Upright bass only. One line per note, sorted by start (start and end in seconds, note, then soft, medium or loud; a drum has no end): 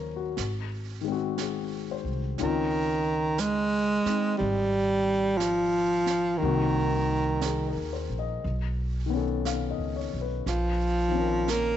0.00 0.34 D#2 medium
0.38 2.01 G#1 medium
2.04 2.37 C2 medium
2.40 4.02 C#2 medium
4.05 muted upright bass stroke soft
4.40 6.37 G#1 medium
6.42 7.72 C2 medium
7.76 8.07 D#2 soft
8.09 8.40 A#1 medium
8.44 9.75 B1 medium
9.78 10.10 C#2 soft
10.13 10.44 B1 soft
10.46 11.77 A#1 medium